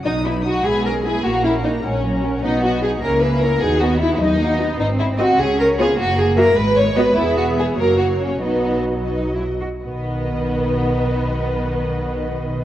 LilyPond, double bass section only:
\new Staff \with { instrumentName = "Double bass section" } { \clef bass \time 6/8 \key b \major \tempo 4. = 100 b,,4. b,,4. | ais,,4. ais,,4. | b,,4. cis,4. | dis,4. dis,4. |
gis,,4. cis,4. | fis,,4. gis,,4. | e,,4. fis,,4. | b,,2~ b,,8 r8 |
b,,2.~ | b,,2. | }